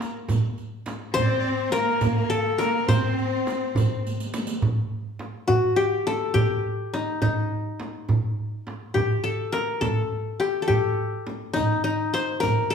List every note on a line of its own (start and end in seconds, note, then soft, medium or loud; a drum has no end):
0.00 0.56 A#4 medium
0.00 0.18 C5 medium
0.00 riq soft
0.00 darbuka tek medium
0.29 riq medium
0.29 frame drum medium
0.29 darbuka dum medium
0.58 riq soft
0.86 riq soft
0.86 darbuka tek medium
0.86 frame drum medium
1.13 1.69 C4 loud
1.13 1.23 C5 medium
1.13 2.19 C5 loud
1.13 riq medium
1.13 frame drum medium
1.13 darbuka dum medium
1.22 1.31 D5 medium
1.30 1.41 C5 medium
1.39 1.50 D5 medium
1.46 1.67 C5 loud
1.46 darbuka ka soft
1.67 1.75 C5 medium
1.72 2.57 A#3 medium
1.72 2.36 A#4 medium
1.72 2.16 A#4 medium
1.72 riq soft
1.72 darbuka tek medium
1.72 frame drum medium
2.01 riq medium
2.01 frame drum medium
2.01 darbuka dum medium
2.17 2.30 A#4 medium
2.29 2.59 A4 medium
2.29 2.64 A4 medium
2.29 riq soft
2.57 2.85 A#3 medium
2.57 2.88 A#4 medium
2.57 3.72 A#4 medium
2.57 riq medium
2.57 darbuka tek medium
2.57 frame drum medium
2.86 3.99 C4 medium
2.86 4.03 C5 medium
2.86 4.00 C5 medium
2.86 frame drum medium
2.86 darbuka dum medium
2.90 riq medium
3.19 riq soft
3.19 darbuka ka soft
3.47 riq soft
3.47 darbuka tek medium
3.47 frame drum medium
3.75 riq medium
3.75 darbuka dum medium
3.75 frame drum medium
4.07 riq medium
4.20 riq medium
4.34 riq medium
4.34 darbuka tek medium
4.34 frame drum medium
4.47 riq medium
4.62 darbuka dum medium
4.62 frame drum medium
5.19 darbuka tek medium
5.19 frame drum medium
5.48 5.82 F#4 medium
5.48 frame drum medium
5.48 darbuka dum medium
5.76 6.34 G4 medium
6.07 7.24 A4 medium
6.07 darbuka tek medium
6.07 frame drum medium
6.34 7.59 G4 medium
6.34 darbuka dum medium
6.34 frame drum medium
6.94 7.21 D#4 medium
6.94 darbuka tek medium
6.94 frame drum medium
7.22 8.66 D#4 medium
7.22 frame drum medium
7.22 darbuka dum medium
7.80 darbuka tek medium
7.80 frame drum medium
8.09 frame drum medium
8.09 darbuka dum medium
8.67 darbuka tek medium
8.67 frame drum medium
8.94 10.20 G4 medium
8.94 frame drum medium
8.94 darbuka dum medium
9.24 9.58 A4 medium
9.52 9.87 A#4 medium
9.52 darbuka tek medium
9.52 frame drum medium
9.81 10.62 A4 medium
9.81 frame drum medium
9.81 darbuka dum medium
10.13 darbuka ka soft
10.40 10.67 G4 medium
10.40 darbuka tek medium
10.40 frame drum medium
10.62 11.79 A4 medium
10.68 11.93 G4 medium
10.68 frame drum medium
10.68 darbuka dum medium
11.00 darbuka ka soft
11.27 frame drum medium
11.54 11.84 D#4 medium
11.54 riq medium
11.54 frame drum medium
11.54 darbuka dum medium
11.84 12.74 D#4 medium
11.84 riq soft
12.13 12.74 C5 medium
12.13 riq soft
12.13 darbuka tek medium
12.13 frame drum medium
12.40 12.74 A#4 medium
12.40 riq medium
12.40 frame drum medium
12.40 darbuka dum medium
12.70 12.74 A4 medium